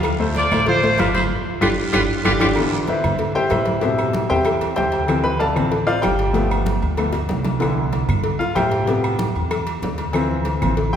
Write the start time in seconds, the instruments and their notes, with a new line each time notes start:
Already playing: upright bass D2, upright piano F3 F4 F5
0.03 cowbell, high conga, low agogo, long guiro, claves
0.19 upright piano A3 A4 C5, high conga
0.35 trumpet section F4 D5, cowbell, high conga, low timbale, low agogo, short guiro
0.51 upright bass A1, upright piano A3 A4 C5, high conga, low conga, low agogo, short guiro, claves
0.66 upright piano F3 F4 F5, trumpet section F4 C5, cowbell, high conga, long guiro
0.83 upright piano A3 A4 C5, high conga, low agogo
0.98 upright bass G1, upright piano F3 F4 F5, trumpet section D4 B4, cowbell, high conga, low timbale, low agogo, short guiro, claves
1.14 trumpet section E4 C5, cowbell, high conga, short guiro
1.61 upright bass G1, upright piano D4 F4 G4, trumpet section F4 G4 B4, cowbell, high conga, high timbale, long guiro, claves
1.93 upright bass G1, upright piano D4 F4 G4, trumpet section F4 G4 B4, cowbell, high conga, high timbale, long guiro, claves
2.25 upright bass G1, upright piano D4 F4 G4, trumpet section F4 G4 B4, cowbell, high conga, high timbale, long guiro, claves
2.40 upright bass G1, upright piano D4 F4 G4, trumpet section F4 G4 B4, cowbell, high conga, high timbale, long guiro, claves
2.56 upright piano D3 E3 B3, cowbell, high conga, low agogo, claves
2.73 high conga
2.87 upright piano E4 B4 C5 E5, cowbell, high conga, low timbale, low agogo
3.04 upright bass G2, high conga, low conga, low agogo, claves
3.19 cowbell, high conga, low conga
3.35 upright piano G4 C5 E5 G5, high conga, low agogo
3.50 upright bass A2, upright piano E4 B4 C5 E5, cowbell, high conga, low timbale, low agogo, claves
3.65 cowbell, high conga
3.81 upright piano B2 C3 G3 E4 A4 C5 E5, cowbell, high conga, low agogo
3.98 high conga, low agogo, claves
4.13 cowbell, high conga, low timbale
4.29 upright bass E2, upright piano C3 G3 B3 G4 C5 E5 G5, high conga, low agogo
4.45 upright piano E4 A4 C5 E5, cowbell, high conga, low agogo, claves
4.61 cowbell, high conga, low agogo
4.76 upright bass D2, upright piano G4 C5 E5 G5, cowbell, high conga, low timbale
4.92 cowbell, low agogo
5.07 upright piano E3 F3 C4, cowbell, high conga, low agogo, claves
5.24 upright piano B4 B5, high conga
5.39 upright piano A4 D5 F5 A5, cowbell, high conga, low timbale, low agogo
5.55 upright bass A1, upright piano E3 F3 C4, high conga, low conga, low agogo, claves
5.72 cowbell, high conga
5.87 upright piano F4 C5 D5 F5, high conga, low agogo
6.02 upright bass G1, upright piano G4 G5, cowbell, high conga, low timbale, low agogo, claves
6.19 cowbell
6.33 upright piano F3 A3 B3, cowbell, high conga, low agogo
6.51 high conga, low agogo, claves
6.66 cowbell, high conga, low timbale
6.82 upright bass D2, high conga, low agogo
6.97 upright piano F3 A3 B3, cowbell, high conga, low agogo, claves
7.13 cowbell, high bongo, high conga, low agogo
7.29 upright bass C2, cowbell, low bongo, high conga, low timbale
7.45 cowbell, low bongo, high conga, low agogo
7.60 upright piano D3 E3 B3, cowbell, high conga, low agogo, claves
7.77 high conga
7.93 cowbell, high conga, low timbale, low agogo
8.09 upright bass G2, high conga, low conga, low agogo, claves
8.24 cowbell, high conga
8.39 upright piano F4 F5, high conga, low agogo
8.55 upright bass A2, upright piano G4 C5 E5 G5, cowbell, high conga, low timbale, low agogo, claves
8.71 cowbell
8.86 upright piano C3 G3 B3, cowbell, high conga, low agogo
9.04 high conga, low agogo, claves
9.19 cowbell, high conga, low timbale
9.35 upright bass E2, high conga, low agogo
9.51 cowbell, high conga, low agogo, claves
9.67 cowbell, high conga, low agogo
9.82 upright bass D2, cowbell, high conga, low timbale
9.98 cowbell, low agogo
10.13 upright piano E3 F3 C4, cowbell, high conga, low agogo, claves
10.31 high conga
10.45 cowbell, high conga, low timbale, low agogo
10.62 upright bass A1, upright piano E3 F3 C4, high conga, low conga, low agogo, claves
10.77 cowbell, high conga
10.93 upright piano G5